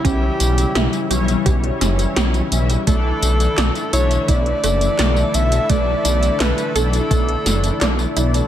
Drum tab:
HH |x-xxxxxxxxxxxxxx|x-xxxxxxxxxxx-xx|x-xxxxxxxxxxx-xx|
TB |x-xxxxxxx-xxxxxx|x-xxxxxxx-xxxxxx|x-xxxxxxx-xxxxxx|
CP |----------------|----x-------x---|----x-------x---|
SD |----o-----o-o---|----o-------o---|----o-----o-o---|
BD |o-------o-------|o-------o-------|o-------o-------|